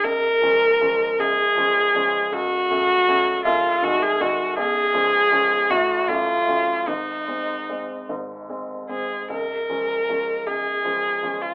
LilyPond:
<<
  \new Staff \with { instrumentName = "Viola" } { \time 6/8 \key des \major \tempo 4. = 52 bes'4. aes'4. | ges'4. f'8 ges'16 aes'16 ges'8 | aes'4. ges'8 f'4 | ees'4. r4 aes'8 |
bes'4. aes'4~ aes'16 f'16 | }
  \new Staff \with { instrumentName = "Grand piano" } { \clef bass \time 6/8 \key des \major <des,, des,>8 <f aes des'>8 <f aes des'>8 <des,, des,>8 <f aes des'>8 <f aes des'>8 | <des,, des,>8 <ges a des'>8 <ges a des'>8 <c,, c,>8 <ees aes ees'>8 <ees aes ees'>8 | <ces,, ces,>8 <f aes des'>8 <f aes des'>8 <a,, a,>8 <ges a des'>8 <ges a des'>8 | <aes,, aes,>8 <aes c'>8 <aes c'>8 <aes,, aes,>8 <aes c'>8 <aes c'>8 |
<des,, des,>8 <f aes des'>8 <f aes des'>8 <des,, des,>8 <f aes des'>8 <f aes des'>8 | }
>>